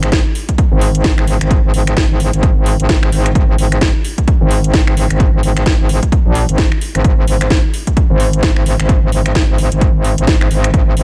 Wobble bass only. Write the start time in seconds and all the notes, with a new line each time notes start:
Already playing: G#1
0.72 G#1
1.04 G#1
1.41 G#1
1.64 G#1
1.74 G#1
2.10 G#1
2.33 G#1
2.79 G#1
2.89 G#1
3.12 G#1
3.35 G#1
3.58 G#1
4.41 G#1
4.74 G#1
5.10 G#1
5.33 G#1
5.43 G#1
5.80 G#1
6.26 A#1
6.49 G#1
6.95 G#1
7.04 G#1
7.27 G#1
8.10 G#1
8.43 G#1
8.79 G#1
9.03 G#1
9.12 G#1
9.49 G#1
9.72 G#1
10.18 G#1
10.28 G#1
10.51 G#1
10.74 G#1
10.97 G#1